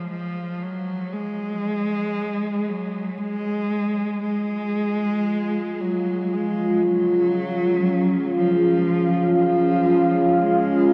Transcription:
0, 0, Header, 1, 3, 480
1, 0, Start_track
1, 0, Tempo, 1038062
1, 38, Time_signature, 4, 2, 24, 8
1, 2918, Tempo, 1023891
1, 5085, End_track
2, 0, Start_track
2, 0, Title_t, "Ambient pad"
2, 0, Program_c, 0, 92
2, 1957, Note_on_c, 0, 65, 79
2, 2401, Note_on_c, 0, 77, 90
2, 2530, Note_on_c, 0, 68, 66
2, 2653, Note_on_c, 0, 61, 61
2, 5085, Note_off_c, 0, 61, 0
2, 5085, Note_off_c, 0, 65, 0
2, 5085, Note_off_c, 0, 68, 0
2, 5085, Note_off_c, 0, 77, 0
2, 5085, End_track
3, 0, Start_track
3, 0, Title_t, "Cello"
3, 0, Program_c, 1, 42
3, 49, Note_on_c, 1, 53, 80
3, 287, Note_on_c, 1, 54, 86
3, 294, Note_off_c, 1, 53, 0
3, 523, Note_on_c, 1, 56, 88
3, 530, Note_off_c, 1, 54, 0
3, 1243, Note_on_c, 1, 54, 75
3, 1250, Note_off_c, 1, 56, 0
3, 1470, Note_on_c, 1, 56, 88
3, 1477, Note_off_c, 1, 54, 0
3, 1951, Note_off_c, 1, 56, 0
3, 1954, Note_on_c, 1, 56, 84
3, 2684, Note_on_c, 1, 54, 73
3, 2691, Note_off_c, 1, 56, 0
3, 2928, Note_on_c, 1, 56, 77
3, 2935, Note_off_c, 1, 54, 0
3, 3163, Note_on_c, 1, 54, 92
3, 3170, Note_off_c, 1, 56, 0
3, 3883, Note_off_c, 1, 54, 0
3, 3886, Note_on_c, 1, 53, 80
3, 4346, Note_off_c, 1, 53, 0
3, 4364, Note_on_c, 1, 53, 82
3, 4842, Note_on_c, 1, 56, 76
3, 4849, Note_off_c, 1, 53, 0
3, 5085, Note_off_c, 1, 56, 0
3, 5085, End_track
0, 0, End_of_file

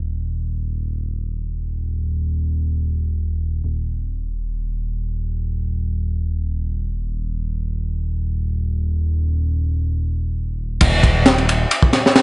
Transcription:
0, 0, Header, 1, 3, 480
1, 0, Start_track
1, 0, Tempo, 500000
1, 11734, End_track
2, 0, Start_track
2, 0, Title_t, "Analog synth bass"
2, 0, Program_c, 0, 38
2, 0, Note_on_c, 0, 27, 83
2, 3480, Note_off_c, 0, 27, 0
2, 3497, Note_on_c, 0, 27, 84
2, 10356, Note_off_c, 0, 27, 0
2, 10379, Note_on_c, 0, 27, 100
2, 11192, Note_off_c, 0, 27, 0
2, 11734, End_track
3, 0, Start_track
3, 0, Title_t, "Drums"
3, 10375, Note_on_c, 9, 51, 78
3, 10376, Note_on_c, 9, 49, 94
3, 10378, Note_on_c, 9, 36, 103
3, 10471, Note_off_c, 9, 51, 0
3, 10472, Note_off_c, 9, 49, 0
3, 10474, Note_off_c, 9, 36, 0
3, 10592, Note_on_c, 9, 36, 93
3, 10594, Note_on_c, 9, 51, 63
3, 10688, Note_off_c, 9, 36, 0
3, 10690, Note_off_c, 9, 51, 0
3, 10807, Note_on_c, 9, 38, 113
3, 10808, Note_on_c, 9, 51, 83
3, 10903, Note_off_c, 9, 38, 0
3, 10904, Note_off_c, 9, 51, 0
3, 10927, Note_on_c, 9, 51, 43
3, 11023, Note_off_c, 9, 51, 0
3, 11029, Note_on_c, 9, 51, 73
3, 11125, Note_off_c, 9, 51, 0
3, 11242, Note_on_c, 9, 51, 85
3, 11338, Note_off_c, 9, 51, 0
3, 11352, Note_on_c, 9, 36, 93
3, 11448, Note_off_c, 9, 36, 0
3, 11451, Note_on_c, 9, 38, 46
3, 11453, Note_on_c, 9, 51, 66
3, 11547, Note_off_c, 9, 38, 0
3, 11549, Note_off_c, 9, 51, 0
3, 11578, Note_on_c, 9, 38, 58
3, 11670, Note_off_c, 9, 38, 0
3, 11670, Note_on_c, 9, 38, 126
3, 11672, Note_on_c, 9, 51, 93
3, 11734, Note_off_c, 9, 38, 0
3, 11734, Note_off_c, 9, 51, 0
3, 11734, End_track
0, 0, End_of_file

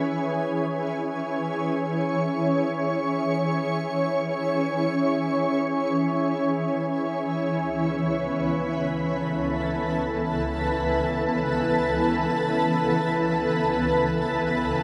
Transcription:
0, 0, Header, 1, 2, 480
1, 0, Start_track
1, 0, Key_signature, 4, "minor"
1, 0, Tempo, 500000
1, 14239, End_track
2, 0, Start_track
2, 0, Title_t, "Ambient pad"
2, 0, Program_c, 0, 92
2, 0, Note_on_c, 0, 52, 63
2, 0, Note_on_c, 0, 61, 67
2, 0, Note_on_c, 0, 68, 93
2, 0, Note_on_c, 0, 71, 62
2, 1009, Note_on_c, 0, 73, 67
2, 1280, Note_off_c, 0, 71, 0
2, 6835, Note_on_c, 0, 37, 70
2, 6872, Note_off_c, 0, 68, 0
2, 7132, Note_on_c, 0, 59, 69
2, 7313, Note_on_c, 0, 71, 80
2, 8000, Note_off_c, 0, 73, 0
2, 8422, Note_on_c, 0, 69, 69
2, 8438, Note_off_c, 0, 61, 0
2, 14239, Note_off_c, 0, 37, 0
2, 14239, Note_off_c, 0, 52, 0
2, 14239, Note_off_c, 0, 59, 0
2, 14239, Note_off_c, 0, 69, 0
2, 14239, Note_off_c, 0, 71, 0
2, 14239, End_track
0, 0, End_of_file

